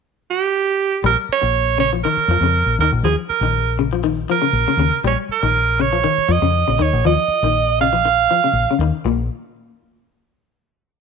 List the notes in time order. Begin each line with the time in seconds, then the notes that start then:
0.30 G4
1.04 A#1 G3 A#4
1.29 C#5, muted fingered electric bass stroke
1.41 A#1, muted clean electric guitar stroke
1.78 C#3 C#5
1.93 F3
2.04 D#3 A#4
2.17 muted fingered electric bass stroke
2.28 F2 F3
2.41 F2 C#3
2.66 A#1
2.79 D#2 D#3 A#4
2.92 A#1
3.03 D#2 F3 G#4
3.29 A#4, muted fingered electric bass stroke
3.41 A#1 D#3
3.79 C#3
3.93 F3
4.04 D#3
4.30 F3 A#4
4.42 C#3
4.53 A#1
4.68 C#3
4.77 D#2 C#3
5.04 A#1 G3 C#5
5.29 A#4, muted fingered electric bass stroke
5.43 A#1 D#3
5.80 C#3 C#5
5.93 F3
6.04 D#3
6.18 muted fingered electric bass stroke
6.28 F2 F3 D#5
6.42 F2 C#3
6.68 A#1 C#3
6.79 D#2 D#3 C#5
6.93 A#1
7.05 D#2 F3 D#5
7.28 muted fingered electric bass stroke
7.43 A#1 D#3
7.81 C#3 F5
7.93 F3
8.05 muted clean electric guitar stroke
8.31 F3
8.44 C#3
8.53 A#1
8.66 muted fingered electric bass stroke
8.71 C#3
8.79 D#2 D#3
9.05 A#1 A#2